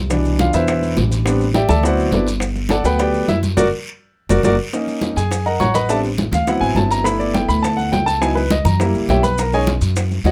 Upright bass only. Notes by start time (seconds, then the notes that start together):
Already playing: C2
0.54 E2
0.97 A1
1.69 D2
2.12 G1
2.84 D2
3.28 F#2
3.57 F#1
4.30 F#1
4.44 F#1
5.17 F#2
5.60 A1
6.31 D2
6.60 G#1
6.75 G1
7.48 D2
7.93 C#2
8.65 F#2
8.95 C#2
9.09 B1
9.81 F#2
10.24 D#2